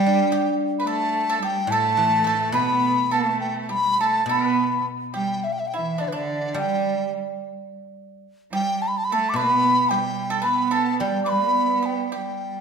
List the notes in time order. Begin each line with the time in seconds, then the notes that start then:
Already playing: G3 G4 G5
0.06 D4
0.32 G4
0.79 B4 B5
0.85 A3 A4 A5
1.29 A4
1.39 G3 G4
1.44 G5
1.67 A2 A3 A5
1.72 A4
1.97 E3
2.24 A3 A4
2.52 B2 B3 B4 B5
3.11 A3 A4 A5
3.40 G5
3.62 A5
3.69 G3 G4 B5
3.97 A3 A4 A5
4.26 B2 B3 B4
4.31 B5
5.14 G3 G4 G5
5.44 E5
5.53 G5
5.59 E5
5.67 G5
5.74 E3 E4 E5
5.98 D3 D4 D5
6.08 B4
6.12 D3 D4 D5
6.54 G3 G4
6.59 G5
8.52 G3 G4 G5
8.82 A5
8.88 B5
8.98 A5
9.04 B5
9.11 A3 A4 A5
9.29 D6
9.34 B2 B3 B4 B5
9.89 G3 G4 G5
10.30 A4
10.42 B3 B4 B5
10.68 A4 B5
10.73 A5
11.00 G3 G4 G5
11.24 B4 D6
11.29 B3 B5
11.82 G4 G5
12.12 G4 G5
12.17 G3